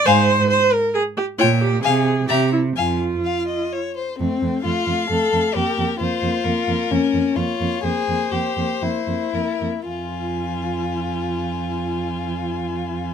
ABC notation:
X:1
M:3/4
L:1/8
Q:1/4=128
K:Fm
V:1 name="Violin"
a z4 z | g z a z b z | a z4 z | z2 f4 |
B2 c2 B2- | B2 d2 c2- | c4 B z | a6- |
a6 |]
V:2 name="Violin"
f z4 z | d z f z =e z | f z f e d c | C2 F2 =A2 |
G2 F4 | D2 F2 A2 | G2 =E4 | F6- |
F6 |]
V:3 name="Viola"
c2 c B A G | F G A2 G =E | F4 z2 | =A, A, A, A, A, A, |
B, B, B, B, B, B, | B, B, B, B, B, B, | B, B, B, B, B, B, | F6- |
F6 |]
V:4 name="Cello" clef=bass
A,,2 z4 | B,,2 C,2 C,2 | F,,2 z4 | F,, F,, F,, F,, F,, F,, |
F,, F,, F,, F,, F,, F,, | F,, F,, F,, F,, F,, F,, | F,, F,, F,, F,, F,, F,, | F,,6- |
F,,6 |]